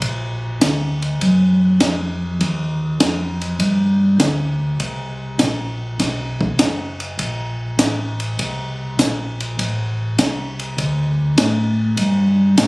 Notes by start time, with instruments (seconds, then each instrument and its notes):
0.02 tonewheel organ A#1, kick, ride
0.61 tonewheel organ D2, kick, snare, hi-hat pedal, ride
1.02 ride
1.21 tonewheel organ F#2, kick, ride
1.80 tonewheel organ F2, kick, snare, hi-hat pedal, ride
2.41 tonewheel organ D#2, kick, ride
3.00 tonewheel organ F2, kick, snare, hi-hat pedal, ride
3.41 ride
3.60 tonewheel organ G2, kick, ride
4.20 tonewheel organ D2, kick, snare, hi-hat pedal, ride
4.80 tonewheel organ C2, kick, ride
5.39 tonewheel organ A#1, kick, snare, hi-hat pedal, ride
5.99 tonewheel organ B1, kick, snare, ride
6.41 kick
6.59 tonewheel organ F#1, kick, snare, hi-hat pedal, ride
7.00 ride
7.19 tonewheel organ A#1, kick, ride
7.79 tonewheel organ A1, kick, snare, hi-hat pedal, ride
8.20 ride
8.39 tonewheel organ C2, kick, ride
8.99 tonewheel organ A#1, kick, snare, hi-hat pedal, ride
9.40 ride
9.59 tonewheel organ A1, kick, ride
10.19 tonewheel organ C2, kick, snare, hi-hat pedal, ride
10.59 ride
10.78 tonewheel organ D2, kick, ride
11.38 tonewheel organ A2, kick, snare, hi-hat pedal, ride
11.97 tonewheel organ G2, kick, ride
12.58 tonewheel organ A2, kick, snare, hi-hat pedal, ride